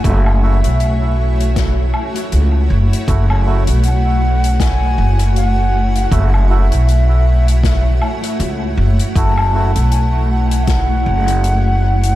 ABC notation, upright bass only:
X:1
M:4/4
L:1/16
Q:"Swing 16ths" 1/4=79
K:F#m
V:1 name="Upright bass" clef=bass
F,,,3 B,,,6- B,,, z2 C,,2 F,,, z | F,,,3 B,,,6- B,,, F,,,6 | F,,,3 B,,,6- B,,, z2 C,,2 F,,, z | F,,,3 B,,,6- B,,, F,,,6 |]